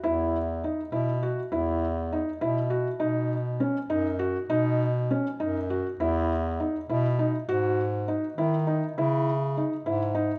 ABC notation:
X:1
M:5/8
L:1/8
Q:1/4=101
K:E
V:1 name="Felt piano"
E2 D E F | E2 D E F | D2 C D F | D2 C D F |
E2 D E D | F2 D E D | E2 D E D |]
V:2 name="Bass clarinet" clef=bass
E,,3 B,,2 | E,,3 B,,2 | B,,3 F,,2 | B,,3 F,,2 |
E,,3 B,,2 | G,,3 D,2 | C,3 G,,2 |]